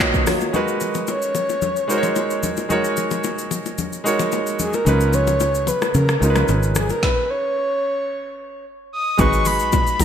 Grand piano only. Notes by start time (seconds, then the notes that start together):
Already playing: D#3 A#3 F4 F#4 B4 C#5
0.53 G#3 D#4 F#4 A#4 B4
1.88 G#3 D#4 F#4 A#4 C5
1.98 C#5
2.69 G#3 D#4 F#4 A#4 C#5
4.04 G#3 D#4 F#4 A#4 C#5
4.85 C#3 C#4 D#4 F4 B4
6.20 C#3 C#4 D#4 F4 A#4
6.30 B4
9.17 G#3 D#4 F#4 G#4 B4